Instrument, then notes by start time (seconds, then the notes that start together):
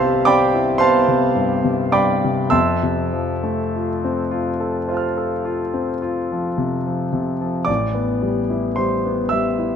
grand piano
Already playing: C2 G2 C3 G3 B3 C4 E4 G4 C5 E5 F5 A5 C6 E6
0.05 G4
0.25 C4 D5 G5 B5 D6
0.54 E4
0.78 B3 C5 F5 A5 C6
1.08 C3
1.35 G2
1.64 C3
1.92 G2 D5 G5 B5 D6
2.24 C3
2.50 F2 E5 A5 C6 E6
2.83 C3
3.13 F3
3.43 A3
3.76 F4
4.04 C4
4.31 F4
4.60 A4
4.88 F4 C5 F5
4.94 A5 F6
5.17 A4
5.45 F4
5.74 C4
6.02 F4
6.32 F3
6.58 C3
6.87 F3
7.13 C3
7.41 F3
7.65 A1 D5 D6
7.94 B3
8.23 G3
8.50 E4
8.76 G3 C5 C6
9.06 B3
9.29 G3 E5 E6
9.59 E4